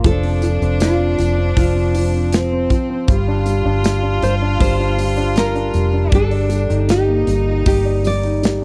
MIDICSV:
0, 0, Header, 1, 6, 480
1, 0, Start_track
1, 0, Tempo, 759494
1, 27, Time_signature, 4, 2, 24, 8
1, 3867, Tempo, 772201
1, 5436, End_track
2, 0, Start_track
2, 0, Title_t, "Nylon-string guitar"
2, 0, Program_c, 0, 24
2, 38, Note_on_c, 0, 69, 101
2, 519, Note_on_c, 0, 65, 74
2, 529, Note_off_c, 0, 69, 0
2, 969, Note_off_c, 0, 65, 0
2, 1003, Note_on_c, 0, 65, 78
2, 1689, Note_off_c, 0, 65, 0
2, 2675, Note_on_c, 0, 72, 87
2, 2739, Note_off_c, 0, 72, 0
2, 2913, Note_on_c, 0, 72, 89
2, 3396, Note_off_c, 0, 72, 0
2, 3398, Note_on_c, 0, 70, 92
2, 3881, Note_off_c, 0, 70, 0
2, 3884, Note_on_c, 0, 69, 83
2, 4355, Note_on_c, 0, 67, 76
2, 4368, Note_off_c, 0, 69, 0
2, 4825, Note_off_c, 0, 67, 0
2, 4832, Note_on_c, 0, 67, 82
2, 5076, Note_off_c, 0, 67, 0
2, 5079, Note_on_c, 0, 74, 93
2, 5436, Note_off_c, 0, 74, 0
2, 5436, End_track
3, 0, Start_track
3, 0, Title_t, "Cello section"
3, 0, Program_c, 1, 48
3, 28, Note_on_c, 1, 62, 112
3, 1467, Note_off_c, 1, 62, 0
3, 1474, Note_on_c, 1, 60, 98
3, 1950, Note_off_c, 1, 60, 0
3, 1956, Note_on_c, 1, 65, 125
3, 3848, Note_off_c, 1, 65, 0
3, 3867, Note_on_c, 1, 62, 96
3, 4343, Note_on_c, 1, 63, 96
3, 4346, Note_off_c, 1, 62, 0
3, 5436, Note_off_c, 1, 63, 0
3, 5436, End_track
4, 0, Start_track
4, 0, Title_t, "Grand piano"
4, 0, Program_c, 2, 0
4, 0, Control_c, 2, 64, 127
4, 29, Note_on_c, 2, 53, 70
4, 36, Control_c, 2, 64, 0
4, 137, Control_c, 2, 64, 127
4, 152, Note_on_c, 2, 60, 55
4, 262, Note_off_c, 2, 53, 0
4, 271, Note_on_c, 2, 53, 56
4, 382, Note_off_c, 2, 60, 0
4, 391, Note_on_c, 2, 60, 55
4, 503, Note_off_c, 2, 53, 0
4, 512, Note_on_c, 2, 53, 59
4, 620, Note_off_c, 2, 60, 0
4, 629, Note_on_c, 2, 60, 54
4, 738, Note_off_c, 2, 53, 0
4, 747, Note_on_c, 2, 53, 53
4, 861, Note_off_c, 2, 60, 0
4, 870, Note_on_c, 2, 60, 54
4, 981, Note_off_c, 2, 53, 0
4, 990, Note_on_c, 2, 53, 68
4, 1098, Note_off_c, 2, 60, 0
4, 1107, Note_on_c, 2, 60, 51
4, 1224, Note_off_c, 2, 53, 0
4, 1233, Note_on_c, 2, 53, 54
4, 1343, Note_off_c, 2, 60, 0
4, 1353, Note_on_c, 2, 60, 54
4, 1467, Note_off_c, 2, 53, 0
4, 1477, Note_on_c, 2, 53, 57
4, 1583, Note_off_c, 2, 60, 0
4, 1592, Note_on_c, 2, 60, 57
4, 1697, Note_off_c, 2, 53, 0
4, 1707, Note_on_c, 2, 53, 54
4, 1821, Note_off_c, 2, 60, 0
4, 1831, Note_on_c, 2, 60, 64
4, 1939, Note_off_c, 2, 53, 0
4, 1945, Note_off_c, 2, 60, 0
4, 1948, Note_on_c, 2, 55, 71
4, 1954, Control_c, 2, 64, 0
4, 2053, Control_c, 2, 64, 127
4, 2071, Note_on_c, 2, 62, 56
4, 2178, Note_off_c, 2, 55, 0
4, 2187, Note_on_c, 2, 55, 58
4, 2296, Note_off_c, 2, 62, 0
4, 2306, Note_on_c, 2, 62, 61
4, 2415, Note_off_c, 2, 55, 0
4, 2425, Note_on_c, 2, 55, 59
4, 2535, Note_off_c, 2, 62, 0
4, 2544, Note_on_c, 2, 62, 52
4, 2662, Note_off_c, 2, 55, 0
4, 2671, Note_on_c, 2, 55, 57
4, 2781, Note_off_c, 2, 62, 0
4, 2791, Note_on_c, 2, 62, 60
4, 2896, Note_off_c, 2, 55, 0
4, 2905, Note_on_c, 2, 55, 66
4, 3019, Note_off_c, 2, 62, 0
4, 3029, Note_on_c, 2, 62, 52
4, 3136, Note_off_c, 2, 55, 0
4, 3146, Note_on_c, 2, 55, 59
4, 3257, Note_off_c, 2, 62, 0
4, 3266, Note_on_c, 2, 62, 54
4, 3378, Note_off_c, 2, 55, 0
4, 3388, Note_on_c, 2, 55, 61
4, 3497, Note_off_c, 2, 62, 0
4, 3507, Note_on_c, 2, 62, 62
4, 3614, Note_off_c, 2, 55, 0
4, 3624, Note_on_c, 2, 55, 55
4, 3738, Note_off_c, 2, 62, 0
4, 3748, Note_on_c, 2, 62, 53
4, 3853, Note_off_c, 2, 55, 0
4, 3863, Note_on_c, 2, 55, 60
4, 3865, Note_off_c, 2, 62, 0
4, 3877, Control_c, 2, 64, 0
4, 3970, Control_c, 2, 64, 127
4, 3984, Note_on_c, 2, 74, 54
4, 4091, Note_off_c, 2, 55, 0
4, 4101, Note_on_c, 2, 55, 58
4, 4224, Note_on_c, 2, 63, 54
4, 4332, Note_off_c, 2, 55, 0
4, 4341, Note_on_c, 2, 55, 51
4, 4463, Note_on_c, 2, 58, 46
4, 4574, Note_off_c, 2, 55, 0
4, 4583, Note_on_c, 2, 55, 52
4, 4810, Note_off_c, 2, 55, 0
4, 4819, Note_on_c, 2, 55, 56
4, 4918, Note_off_c, 2, 74, 0
4, 4943, Note_on_c, 2, 74, 48
4, 5051, Note_off_c, 2, 55, 0
4, 5061, Note_on_c, 2, 55, 53
4, 5159, Note_off_c, 2, 63, 0
4, 5183, Note_on_c, 2, 63, 49
4, 5293, Note_off_c, 2, 55, 0
4, 5303, Note_on_c, 2, 55, 57
4, 5401, Note_off_c, 2, 58, 0
4, 5436, Note_off_c, 2, 55, 0
4, 5436, Note_off_c, 2, 63, 0
4, 5436, Note_off_c, 2, 74, 0
4, 5436, End_track
5, 0, Start_track
5, 0, Title_t, "Fingered electric bass"
5, 0, Program_c, 3, 33
5, 30, Note_on_c, 3, 29, 104
5, 365, Note_off_c, 3, 29, 0
5, 391, Note_on_c, 3, 29, 100
5, 726, Note_off_c, 3, 29, 0
5, 755, Note_on_c, 3, 29, 92
5, 975, Note_off_c, 3, 29, 0
5, 991, Note_on_c, 3, 29, 99
5, 1683, Note_off_c, 3, 29, 0
5, 1948, Note_on_c, 3, 31, 107
5, 2282, Note_off_c, 3, 31, 0
5, 2310, Note_on_c, 3, 31, 104
5, 2644, Note_off_c, 3, 31, 0
5, 2672, Note_on_c, 3, 31, 100
5, 2893, Note_off_c, 3, 31, 0
5, 2913, Note_on_c, 3, 31, 95
5, 3605, Note_off_c, 3, 31, 0
5, 3632, Note_on_c, 3, 29, 83
5, 3854, Note_off_c, 3, 29, 0
5, 3870, Note_on_c, 3, 31, 100
5, 4202, Note_off_c, 3, 31, 0
5, 4229, Note_on_c, 3, 31, 90
5, 4562, Note_off_c, 3, 31, 0
5, 4586, Note_on_c, 3, 31, 88
5, 4808, Note_off_c, 3, 31, 0
5, 4828, Note_on_c, 3, 31, 80
5, 5436, Note_off_c, 3, 31, 0
5, 5436, End_track
6, 0, Start_track
6, 0, Title_t, "Drums"
6, 27, Note_on_c, 9, 46, 78
6, 28, Note_on_c, 9, 36, 118
6, 28, Note_on_c, 9, 44, 61
6, 90, Note_off_c, 9, 46, 0
6, 91, Note_off_c, 9, 36, 0
6, 91, Note_off_c, 9, 44, 0
6, 148, Note_on_c, 9, 46, 52
6, 211, Note_off_c, 9, 46, 0
6, 266, Note_on_c, 9, 46, 71
6, 267, Note_on_c, 9, 54, 47
6, 269, Note_on_c, 9, 44, 58
6, 329, Note_off_c, 9, 46, 0
6, 330, Note_off_c, 9, 54, 0
6, 333, Note_off_c, 9, 44, 0
6, 391, Note_on_c, 9, 44, 61
6, 454, Note_off_c, 9, 44, 0
6, 507, Note_on_c, 9, 54, 77
6, 509, Note_on_c, 9, 46, 88
6, 510, Note_on_c, 9, 44, 56
6, 518, Note_on_c, 9, 38, 98
6, 570, Note_off_c, 9, 54, 0
6, 573, Note_off_c, 9, 44, 0
6, 573, Note_off_c, 9, 46, 0
6, 581, Note_off_c, 9, 38, 0
6, 750, Note_on_c, 9, 46, 71
6, 752, Note_on_c, 9, 44, 59
6, 758, Note_on_c, 9, 54, 48
6, 813, Note_off_c, 9, 46, 0
6, 815, Note_off_c, 9, 44, 0
6, 821, Note_off_c, 9, 54, 0
6, 990, Note_on_c, 9, 44, 65
6, 991, Note_on_c, 9, 36, 92
6, 991, Note_on_c, 9, 46, 84
6, 992, Note_on_c, 9, 54, 42
6, 1054, Note_off_c, 9, 36, 0
6, 1054, Note_off_c, 9, 44, 0
6, 1055, Note_off_c, 9, 46, 0
6, 1056, Note_off_c, 9, 54, 0
6, 1229, Note_on_c, 9, 44, 63
6, 1230, Note_on_c, 9, 46, 70
6, 1230, Note_on_c, 9, 54, 47
6, 1292, Note_off_c, 9, 44, 0
6, 1293, Note_off_c, 9, 46, 0
6, 1293, Note_off_c, 9, 54, 0
6, 1469, Note_on_c, 9, 44, 53
6, 1469, Note_on_c, 9, 46, 89
6, 1471, Note_on_c, 9, 54, 74
6, 1481, Note_on_c, 9, 38, 102
6, 1532, Note_off_c, 9, 46, 0
6, 1533, Note_off_c, 9, 44, 0
6, 1534, Note_off_c, 9, 54, 0
6, 1544, Note_off_c, 9, 38, 0
6, 1705, Note_on_c, 9, 54, 30
6, 1708, Note_on_c, 9, 36, 85
6, 1708, Note_on_c, 9, 46, 62
6, 1710, Note_on_c, 9, 44, 57
6, 1769, Note_off_c, 9, 54, 0
6, 1771, Note_off_c, 9, 36, 0
6, 1772, Note_off_c, 9, 46, 0
6, 1773, Note_off_c, 9, 44, 0
6, 1944, Note_on_c, 9, 54, 29
6, 1948, Note_on_c, 9, 36, 117
6, 1948, Note_on_c, 9, 44, 65
6, 1948, Note_on_c, 9, 46, 85
6, 2007, Note_off_c, 9, 54, 0
6, 2011, Note_off_c, 9, 36, 0
6, 2011, Note_off_c, 9, 46, 0
6, 2012, Note_off_c, 9, 44, 0
6, 2186, Note_on_c, 9, 46, 68
6, 2189, Note_on_c, 9, 44, 64
6, 2189, Note_on_c, 9, 54, 49
6, 2249, Note_off_c, 9, 46, 0
6, 2252, Note_off_c, 9, 54, 0
6, 2253, Note_off_c, 9, 44, 0
6, 2428, Note_on_c, 9, 54, 82
6, 2429, Note_on_c, 9, 44, 61
6, 2429, Note_on_c, 9, 46, 93
6, 2437, Note_on_c, 9, 38, 100
6, 2491, Note_off_c, 9, 54, 0
6, 2492, Note_off_c, 9, 46, 0
6, 2493, Note_off_c, 9, 44, 0
6, 2501, Note_off_c, 9, 38, 0
6, 2670, Note_on_c, 9, 46, 78
6, 2672, Note_on_c, 9, 44, 65
6, 2678, Note_on_c, 9, 54, 51
6, 2733, Note_off_c, 9, 46, 0
6, 2735, Note_off_c, 9, 44, 0
6, 2741, Note_off_c, 9, 54, 0
6, 2910, Note_on_c, 9, 54, 44
6, 2911, Note_on_c, 9, 36, 102
6, 2911, Note_on_c, 9, 44, 66
6, 2912, Note_on_c, 9, 46, 90
6, 2973, Note_off_c, 9, 54, 0
6, 2974, Note_off_c, 9, 36, 0
6, 2974, Note_off_c, 9, 44, 0
6, 2975, Note_off_c, 9, 46, 0
6, 3150, Note_on_c, 9, 54, 52
6, 3152, Note_on_c, 9, 44, 61
6, 3153, Note_on_c, 9, 46, 67
6, 3213, Note_off_c, 9, 54, 0
6, 3215, Note_off_c, 9, 44, 0
6, 3217, Note_off_c, 9, 46, 0
6, 3266, Note_on_c, 9, 46, 55
6, 3329, Note_off_c, 9, 46, 0
6, 3386, Note_on_c, 9, 46, 76
6, 3387, Note_on_c, 9, 44, 56
6, 3394, Note_on_c, 9, 54, 67
6, 3398, Note_on_c, 9, 38, 102
6, 3450, Note_off_c, 9, 44, 0
6, 3450, Note_off_c, 9, 46, 0
6, 3457, Note_off_c, 9, 54, 0
6, 3461, Note_off_c, 9, 38, 0
6, 3507, Note_on_c, 9, 44, 57
6, 3571, Note_off_c, 9, 44, 0
6, 3626, Note_on_c, 9, 46, 57
6, 3627, Note_on_c, 9, 44, 65
6, 3627, Note_on_c, 9, 54, 29
6, 3689, Note_off_c, 9, 46, 0
6, 3690, Note_off_c, 9, 44, 0
6, 3690, Note_off_c, 9, 54, 0
6, 3867, Note_on_c, 9, 46, 82
6, 3868, Note_on_c, 9, 44, 67
6, 3869, Note_on_c, 9, 36, 106
6, 3930, Note_off_c, 9, 44, 0
6, 3930, Note_off_c, 9, 46, 0
6, 3931, Note_off_c, 9, 36, 0
6, 3988, Note_on_c, 9, 46, 57
6, 4050, Note_off_c, 9, 46, 0
6, 4103, Note_on_c, 9, 46, 74
6, 4106, Note_on_c, 9, 44, 61
6, 4107, Note_on_c, 9, 54, 51
6, 4165, Note_off_c, 9, 46, 0
6, 4169, Note_off_c, 9, 44, 0
6, 4169, Note_off_c, 9, 54, 0
6, 4227, Note_on_c, 9, 44, 60
6, 4290, Note_off_c, 9, 44, 0
6, 4345, Note_on_c, 9, 46, 91
6, 4346, Note_on_c, 9, 44, 57
6, 4346, Note_on_c, 9, 54, 74
6, 4354, Note_on_c, 9, 38, 98
6, 4407, Note_off_c, 9, 46, 0
6, 4408, Note_off_c, 9, 44, 0
6, 4408, Note_off_c, 9, 54, 0
6, 4416, Note_off_c, 9, 38, 0
6, 4584, Note_on_c, 9, 46, 74
6, 4586, Note_on_c, 9, 44, 60
6, 4592, Note_on_c, 9, 54, 47
6, 4646, Note_off_c, 9, 46, 0
6, 4648, Note_off_c, 9, 44, 0
6, 4654, Note_off_c, 9, 54, 0
6, 4824, Note_on_c, 9, 44, 65
6, 4825, Note_on_c, 9, 46, 90
6, 4826, Note_on_c, 9, 36, 97
6, 4826, Note_on_c, 9, 54, 43
6, 4886, Note_off_c, 9, 44, 0
6, 4887, Note_off_c, 9, 46, 0
6, 4888, Note_off_c, 9, 36, 0
6, 4888, Note_off_c, 9, 54, 0
6, 5064, Note_on_c, 9, 54, 47
6, 5066, Note_on_c, 9, 44, 60
6, 5067, Note_on_c, 9, 46, 65
6, 5126, Note_off_c, 9, 54, 0
6, 5128, Note_off_c, 9, 44, 0
6, 5129, Note_off_c, 9, 46, 0
6, 5182, Note_on_c, 9, 46, 51
6, 5244, Note_off_c, 9, 46, 0
6, 5306, Note_on_c, 9, 46, 79
6, 5307, Note_on_c, 9, 44, 59
6, 5308, Note_on_c, 9, 54, 72
6, 5318, Note_on_c, 9, 38, 100
6, 5368, Note_off_c, 9, 46, 0
6, 5369, Note_off_c, 9, 44, 0
6, 5370, Note_off_c, 9, 54, 0
6, 5380, Note_off_c, 9, 38, 0
6, 5436, End_track
0, 0, End_of_file